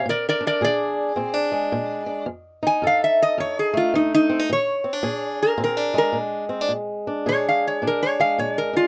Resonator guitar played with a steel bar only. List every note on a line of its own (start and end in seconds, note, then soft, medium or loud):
0.09 0.26 A#4 medium
0.09 0.26 D5 medium
0.29 0.44 A#4 medium
0.29 0.45 D5 medium
0.47 0.62 A#4 medium
0.47 0.63 D5 medium
0.64 2.25 D5 medium
2.67 2.84 G#5 medium
2.87 3.03 F5 medium
3.04 3.21 E5 medium
3.22 3.39 D#5 medium
3.40 3.57 C#5 medium
3.59 3.76 G#4 medium
3.77 3.94 F4 medium
3.95 4.13 D#4 medium
4.14 4.49 D#4 loud
4.53 5.39 C#5 medium
5.42 5.61 A#4 medium
5.64 5.96 A#4 medium
5.98 6.17 A#4 medium
7.29 7.46 C#5 medium
7.49 7.65 F5 medium
7.67 7.83 C#5 medium
7.87 8.03 A#4 medium
8.03 8.20 C#5 medium
8.20 8.38 F5 medium
8.39 8.56 C#5 medium
8.58 8.75 A#4 medium
8.77 8.87 F4 medium